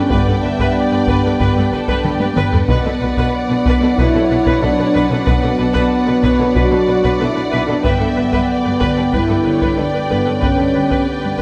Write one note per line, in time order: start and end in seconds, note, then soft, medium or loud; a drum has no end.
0.00 2.52 G3 medium
0.00 2.69 G3 medium
0.00 2.64 B3 medium
0.00 0.11 C#4 medium
0.00 2.52 D4 medium
0.00 2.65 D4 medium
0.00 2.64 B4 medium
0.00 2.65 D5 medium
0.00 2.65 G5 medium
0.10 0.17 G1 medium
0.10 0.18 G2 medium
0.10 2.36 B3 medium
0.10 0.26 B4 medium
0.10 0.42 D5 medium
0.10 taiko medium
0.27 0.33 G2 soft
0.27 0.34 A4 soft
0.27 0.34 B4 soft
0.43 0.50 G1 soft
0.43 0.49 G2 soft
0.43 0.50 B4 soft
0.43 0.75 E5 medium
0.59 0.66 G2 medium
0.59 0.75 B4 medium
0.59 taiko medium
0.75 1.39 D5 medium
0.91 0.98 G2 soft
0.91 0.99 B4 soft
1.07 1.14 G1 medium
1.07 1.14 G2 medium
1.07 1.23 B4 medium
1.07 taiko medium
1.24 1.30 G2 soft
1.24 1.31 A4 soft
1.24 1.31 B4 soft
1.39 1.46 G1 medium
1.39 1.46 G2 medium
1.39 1.71 B4 medium
1.39 1.55 B4 medium
1.39 taiko medium
1.56 1.63 G2 soft
1.56 1.63 A4 medium
1.56 1.63 B4 soft
1.72 1.79 G1 soft
1.72 1.79 G2 medium
1.72 2.04 A4 medium
1.72 1.79 B4 soft
1.88 1.95 G2 medium
1.88 2.04 B4 medium
1.88 taiko medium
2.04 2.11 G1 soft
2.04 2.11 G2 soft
2.04 2.37 G4 medium
2.04 2.11 A4 medium
2.04 2.11 B4 soft
2.04 taiko mid medium
2.20 2.27 G2 medium
2.20 2.27 B4 medium
2.20 taiko high medium
2.36 2.43 G1 medium
2.36 2.43 G2 medium
2.36 2.52 B4 medium
2.36 3.31 B4 medium
2.36 taiko mid medium
2.52 2.59 G2 medium
2.52 2.59 A4 medium
2.52 2.60 B4 medium
2.52 taiko low medium
2.69 2.75 B1 medium
2.69 2.76 B2 medium
2.69 7.85 F#3 medium
2.69 7.81 F#3 medium
2.69 7.81 B3 medium
2.69 3.94 B3 medium
2.69 7.81 D4 medium
2.69 7.81 B4 medium
2.69 2.84 B4 medium
2.69 7.81 D5 medium
2.69 7.81 F#5 medium
2.69 taiko medium
2.85 2.92 B2 medium
2.85 2.92 A4 soft
2.85 2.92 B4 soft
3.01 3.08 B1 soft
3.01 3.08 B2 soft
3.01 3.08 B4 medium
3.17 3.24 B2 medium
3.17 3.33 B4 medium
3.17 taiko medium
3.34 3.98 D5 medium
3.49 3.56 B2 medium
3.49 3.56 B4 soft
3.66 3.73 B1 medium
3.66 3.72 B2 medium
3.66 3.81 B4 medium
3.66 taiko medium
3.81 3.88 B2 medium
3.81 3.89 A4 soft
3.81 3.89 B4 medium
3.97 4.05 B1 medium
3.97 4.04 B2 medium
3.97 4.62 E4 medium
3.97 4.13 B4 medium
3.97 5.27 C#5 medium
3.97 taiko medium
4.14 4.20 B2 medium
4.14 4.22 A4 medium
4.14 4.22 B4 medium
4.30 4.37 B1 medium
4.30 4.37 B2 medium
4.30 4.37 B4 medium
4.46 4.52 B2 medium
4.46 4.61 B4 medium
4.46 taiko medium
4.62 4.70 B1 soft
4.62 4.69 B2 medium
4.62 4.84 D4 medium
4.62 4.69 A4 medium
4.62 4.69 B4 medium
4.78 4.84 B2 medium
4.78 4.86 B4 medium
4.85 5.06 D4 medium
4.95 5.01 B1 medium
4.95 5.01 B2 medium
4.95 5.10 B4 medium
5.07 5.17 B2 medium
5.07 5.28 C#4 medium
5.11 5.18 A4 medium
5.11 5.18 B4 medium
5.26 5.33 B1 medium
5.26 5.33 B2 medium
5.26 6.56 B3 medium
5.26 5.41 B4 medium
5.26 5.59 B4 medium
5.26 taiko medium
5.42 5.50 B2 medium
5.42 5.49 A4 soft
5.42 5.49 B4 soft
5.58 5.66 B1 soft
5.58 5.65 B2 medium
5.58 5.92 A4 medium
5.58 5.65 B4 soft
5.74 5.82 B2 medium
5.74 5.90 B4 medium
5.74 taiko medium
5.92 6.24 B4 medium
6.07 6.14 B2 medium
6.07 6.13 B4 medium
6.23 6.30 B1 medium
6.23 6.30 B2 medium
6.23 6.38 B4 medium
6.23 6.56 C#5 medium
6.23 taiko medium
6.39 6.46 B2 medium
6.39 6.46 A4 soft
6.39 6.46 B4 medium
6.56 6.62 B1 medium
6.56 6.62 B2 medium
6.56 7.21 F#4 loud
6.56 6.70 B4 medium
6.56 7.85 D5 medium
6.56 taiko medium
6.71 6.78 B2 soft
6.71 6.79 A4 soft
6.71 6.78 B4 medium
6.88 6.95 B1 medium
6.88 6.95 B2 medium
6.88 6.95 B4 medium
7.04 7.10 B2 medium
7.04 7.19 B4 medium
7.04 taiko medium
7.20 7.27 B1 soft
7.20 7.27 B2 medium
7.20 7.42 E4 medium
7.20 7.27 A4 medium
7.20 7.27 B4 medium
7.36 7.43 B2 soft
7.36 7.43 B4 medium
7.43 7.63 E4 medium
7.52 7.59 B1 medium
7.52 7.59 B2 medium
7.52 7.67 B4 medium
7.65 7.75 B2 soft
7.65 7.86 D4 medium
7.65 7.75 A4 medium
7.65 7.75 B4 medium
7.84 7.91 G1 medium
7.84 7.91 G2 medium
7.84 11.42 D3 medium
7.84 11.42 G3 medium
7.84 11.42 B3 medium
7.84 9.12 B3 medium
7.84 7.99 B4 medium
7.84 11.42 B4 medium
7.84 11.42 D5 medium
7.84 8.49 E5 medium
7.84 11.42 G5 medium
7.84 taiko medium
8.00 8.07 G2 soft
8.00 8.07 A4 soft
8.00 8.07 B4 soft
8.16 8.24 G1 soft
8.16 8.23 G2 soft
8.16 8.23 B4 soft
8.32 8.39 G2 medium
8.32 8.48 B4 medium
8.32 taiko medium
8.50 9.14 D5 medium
8.65 8.72 G2 soft
8.65 8.72 B4 soft
8.80 8.88 G1 medium
8.80 8.88 G2 medium
8.80 8.95 B4 medium
8.80 taiko medium
8.96 9.04 G2 soft
8.96 9.03 A4 soft
8.96 9.03 B4 soft
9.12 9.21 G1 medium
9.12 9.20 G2 medium
9.12 9.78 E4 medium
9.12 9.28 B4 medium
9.12 9.46 B4 medium
9.12 taiko medium
9.29 9.36 G2 soft
9.29 9.35 A4 soft
9.29 9.35 B4 soft
9.44 9.53 G1 soft
9.44 9.53 G2 soft
9.44 9.51 B4 soft
9.44 9.78 C#5 medium
9.61 9.69 G2 medium
9.61 9.76 B4 medium
9.61 taiko medium
9.77 9.85 G1 soft
9.77 9.85 G2 soft
9.77 10.10 D4 medium
9.77 9.84 A4 soft
9.77 9.84 B4 soft
9.77 10.42 D5 medium
9.93 10.02 G2 soft
9.93 10.00 B4 soft
10.10 10.18 G1 medium
10.10 10.17 G2 medium
10.10 10.27 B3 medium
10.10 10.24 B4 medium
10.25 10.34 G2 soft
10.25 10.41 C#4 medium
10.25 10.32 A4 soft
10.25 10.32 B4 soft
10.41 10.50 G1 medium
10.41 10.49 G2 medium
10.41 11.06 C#4 medium
10.41 10.56 B4 medium
10.41 11.42 B4 medium
10.41 taiko medium
10.58 10.66 G2 soft
10.58 10.65 A4 soft
10.58 10.64 B4 soft
10.74 10.82 G1 soft
10.74 10.82 G2 soft
10.74 10.81 B4 soft
10.90 10.98 G2 medium
10.90 11.06 B4 soft
10.90 taiko medium
11.07 11.42 B3 soft
11.22 11.30 G2 soft
11.22 11.29 B4 soft
11.38 11.42 B4 soft